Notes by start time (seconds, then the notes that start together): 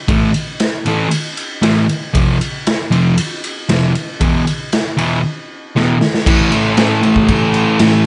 0.08 A2 E3 A3, kick, ride
0.34 ride
0.60 snare, ride
0.86 A2 E3 A3, ride
1.11 ride
1.37 ride
1.62 A2 E3 A3, snare, ride
1.89 ride
2.14 F2 C3 F3, kick, ride
2.41 ride
2.67 snare, ride
2.91 F2 C3 F3, ride
3.18 ride
3.44 ride
3.69 F2 C3 F3, snare, ride
3.95 ride
4.21 E2 B2 E3, kick, ride
4.47 ride
4.72 snare, ride
4.97 E2 B2 E3, ride
5.76 E2 B2 E3, snare
6.01 snare
6.14 snare
6.26 A2 E3 A3, kick, crash
6.51 E3 A3, crash
6.77 A2 E3 A3, snare, crash
7.02 E3 A3, crash
7.16 kick
7.28 kick, crash
7.54 crash
7.79 A2 E3 A3, snare, crash